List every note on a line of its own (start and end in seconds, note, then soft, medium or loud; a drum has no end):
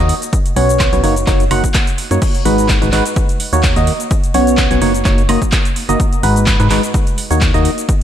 0.00 0.12 D#2 loud
0.00 0.15 D#3 medium
0.00 0.15 A#3 medium
0.00 0.15 D#4 medium
0.00 0.15 F#4 medium
0.00 0.15 D#5 loud
0.09 open hi-hat medium
0.22 closed hi-hat soft
0.22 shaker medium
0.33 kick loud
0.33 closed hi-hat medium
0.33 shaker medium
0.46 closed hi-hat soft
0.46 shaker soft
0.56 0.90 B1 loud
0.56 0.90 B2 loud
0.56 0.90 B3 medium
0.56 0.90 C#4 medium
0.56 0.90 F#4 medium
0.56 0.90 C#5 loud
0.56 open hi-hat loud
0.69 closed hi-hat soft
0.69 shaker medium
0.79 kick loud
0.79 clap loud
0.79 closed hi-hat medium
0.79 high woodblock medium
0.79 shaker medium
0.93 1.01 B1 loud
0.93 1.02 B3 medium
0.93 1.02 C#4 medium
0.93 1.02 F#4 medium
0.93 1.02 C#5 loud
0.93 closed hi-hat soft
0.93 shaker soft
1.04 1.25 F#1 loud
1.04 1.15 A#3 medium
1.04 1.15 D#4 medium
1.04 1.15 F#4 medium
1.04 1.15 C#5 loud
1.04 open hi-hat medium
1.16 closed hi-hat soft
1.16 shaker medium
1.27 1.49 F#1 loud
1.27 1.45 A#3 medium
1.27 1.45 D#4 medium
1.27 1.45 F#4 medium
1.27 1.45 C#5 loud
1.27 kick loud
1.27 clap medium
1.27 closed hi-hat medium
1.27 shaker medium
1.40 closed hi-hat soft
1.40 shaker soft
1.51 1.66 F#1 loud
1.51 1.68 A#3 medium
1.51 1.68 D#4 medium
1.51 1.68 F#4 medium
1.51 1.68 F#5 medium
1.51 open hi-hat loud
1.51 high woodblock medium
1.64 kick medium
1.64 closed hi-hat soft
1.64 shaker medium
1.74 kick loud
1.74 clap loud
1.74 closed hi-hat medium
1.74 shaker medium
1.87 closed hi-hat soft
1.87 shaker soft
1.98 open hi-hat medium
2.11 2.18 F#2 medium
2.11 2.21 A#3 medium
2.11 2.21 D#4 medium
2.11 2.21 F#4 medium
2.11 2.21 C#5 medium
2.11 closed hi-hat soft
2.11 shaker medium
2.22 kick loud
2.22 closed hi-hat medium
2.22 crash medium
2.22 shaker medium
2.35 closed hi-hat soft
2.35 shaker soft
2.45 2.79 G#1 loud
2.45 2.79 G#2 loud
2.45 2.79 G#3 medium
2.45 2.79 D#4 medium
2.45 2.79 F#4 loud
2.45 2.79 B4 loud
2.45 open hi-hat loud
2.58 closed hi-hat soft
2.58 shaker medium
2.68 kick loud
2.68 clap loud
2.68 closed hi-hat medium
2.68 shaker medium
2.82 2.91 G#1 loud
2.82 2.90 G#2 loud
2.82 2.90 G#3 medium
2.82 2.90 D#4 medium
2.82 2.90 F#4 medium
2.82 2.90 B4 loud
2.82 closed hi-hat soft
2.82 shaker soft
2.92 3.01 G#1 medium
2.92 3.04 G#3 loud
2.92 3.04 D#4 medium
2.92 3.04 F#4 medium
2.92 3.04 B4 loud
2.92 clap medium
2.92 open hi-hat medium
3.06 closed hi-hat soft
3.06 shaker medium
3.16 kick loud
3.16 closed hi-hat medium
3.16 shaker medium
3.29 closed hi-hat soft
3.29 shaker soft
3.40 open hi-hat loud
3.53 3.74 D#2 loud
3.53 3.73 D#3 medium
3.53 3.73 A#3 medium
3.53 3.73 D#4 medium
3.53 3.73 F#4 medium
3.53 3.73 C#5 medium
3.53 closed hi-hat soft
3.53 shaker medium
3.63 kick loud
3.63 clap loud
3.63 closed hi-hat medium
3.63 shaker medium
3.76 3.90 D#2 loud
3.76 3.93 D#3 medium
3.76 3.93 A#3 medium
3.76 3.93 D#4 medium
3.76 3.93 F#4 medium
3.76 3.93 D#5 loud
3.76 closed hi-hat soft
3.76 shaker soft
3.87 open hi-hat loud
4.00 closed hi-hat soft
4.00 shaker medium
4.11 kick loud
4.11 closed hi-hat medium
4.11 shaker medium
4.24 closed hi-hat soft
4.24 shaker soft
4.34 4.68 B1 loud
4.34 4.68 B2 loud
4.34 4.68 B3 medium
4.34 4.68 C#4 medium
4.34 4.68 F#4 medium
4.34 4.68 C#5 loud
4.34 open hi-hat loud
4.47 closed hi-hat soft
4.47 shaker medium
4.57 kick loud
4.57 clap loud
4.57 closed hi-hat medium
4.57 shaker medium
4.71 4.80 B1 loud
4.71 4.80 B3 medium
4.71 4.80 C#4 medium
4.71 4.80 F#4 medium
4.71 4.80 C#5 loud
4.71 closed hi-hat soft
4.71 shaker soft
4.82 5.03 F#1 loud
4.82 4.93 A#3 medium
4.82 4.93 D#4 medium
4.82 4.93 F#4 medium
4.82 4.93 C#5 loud
4.82 open hi-hat loud
4.94 closed hi-hat soft
4.94 shaker medium
5.05 5.27 F#1 loud
5.05 5.23 A#3 medium
5.05 5.23 D#4 medium
5.05 5.23 F#4 medium
5.05 5.23 C#5 loud
5.05 kick loud
5.05 clap medium
5.05 closed hi-hat medium
5.05 shaker medium
5.18 closed hi-hat soft
5.18 shaker soft
5.29 5.38 F#1 loud
5.29 5.40 A#3 loud
5.29 5.40 D#4 medium
5.29 5.40 F#4 medium
5.29 5.40 D#5 loud
5.29 open hi-hat loud
5.29 high woodblock medium
5.42 kick medium
5.42 closed hi-hat soft
5.42 shaker medium
5.52 kick loud
5.52 clap loud
5.52 closed hi-hat medium
5.52 shaker medium
5.65 closed hi-hat soft
5.65 shaker soft
5.76 open hi-hat loud
5.89 5.96 F#1 medium
5.89 5.98 A#3 loud
5.89 5.98 D#4 medium
5.89 5.98 F#4 medium
5.89 5.98 D#5 loud
5.89 closed hi-hat soft
5.89 shaker medium
6.00 kick loud
6.00 closed hi-hat medium
6.00 shaker medium
6.13 closed hi-hat soft
6.13 shaker soft
6.23 6.57 G#1 loud
6.23 6.57 G#2 loud
6.23 6.57 G#3 medium
6.23 6.57 D#4 medium
6.23 6.57 F#4 medium
6.23 6.57 B4 loud
6.23 open hi-hat loud
6.36 closed hi-hat soft
6.36 shaker medium
6.46 kick loud
6.46 clap loud
6.46 closed hi-hat medium
6.46 shaker medium
6.60 6.68 G#2 loud
6.60 6.69 G#2 loud
6.60 6.68 G#3 medium
6.60 6.68 D#4 medium
6.60 6.68 F#4 medium
6.60 6.68 B4 loud
6.60 closed hi-hat soft
6.60 shaker soft
6.70 6.79 G#1 loud
6.70 6.82 G#3 medium
6.70 6.82 D#4 medium
6.70 6.82 F#4 medium
6.70 6.82 B4 loud
6.70 clap medium
6.70 open hi-hat loud
6.83 closed hi-hat soft
6.83 shaker medium
6.94 kick loud
6.94 closed hi-hat medium
6.94 shaker medium
7.07 closed hi-hat soft
7.07 shaker soft
7.18 open hi-hat loud
7.31 7.52 D#2 loud
7.31 7.51 D#3 medium
7.31 7.51 A#3 medium
7.31 7.51 D#4 medium
7.31 7.51 F#4 medium
7.31 7.51 C#5 medium
7.31 closed hi-hat soft
7.31 shaker medium
7.41 kick loud
7.41 clap loud
7.41 closed hi-hat medium
7.41 shaker medium
7.54 7.68 D#2 loud
7.54 7.70 D#3 medium
7.54 7.70 A#3 medium
7.54 7.70 D#4 medium
7.54 7.70 F#4 medium
7.54 7.70 D#5 loud
7.54 closed hi-hat soft
7.54 shaker soft
7.65 open hi-hat loud
7.78 closed hi-hat soft
7.78 shaker medium
7.89 kick loud
7.89 closed hi-hat medium
7.89 shaker medium